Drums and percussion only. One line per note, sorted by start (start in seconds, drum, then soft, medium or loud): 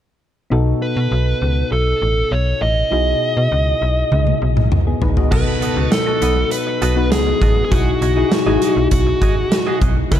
4.12 high tom medium
4.27 high tom soft
4.57 mid tom medium
4.72 mid tom medium
5.02 floor tom medium
5.17 floor tom medium
5.32 kick loud
5.32 crash medium
5.62 closed hi-hat medium
5.92 snare loud
5.92 closed hi-hat medium
6.22 closed hi-hat medium
6.51 closed hi-hat medium
6.82 closed hi-hat medium
7.12 snare loud
7.12 closed hi-hat medium
7.42 kick medium
7.42 closed hi-hat medium
7.72 kick loud
7.72 closed hi-hat medium
8.02 closed hi-hat medium
8.32 snare loud
8.32 closed hi-hat medium
8.62 closed hi-hat medium
8.91 kick medium
8.91 closed hi-hat medium
9.22 kick medium
9.22 closed hi-hat medium
9.52 snare loud
9.52 closed hi-hat medium
9.82 kick medium
9.82 closed hi-hat medium
10.12 kick loud
10.12 closed hi-hat medium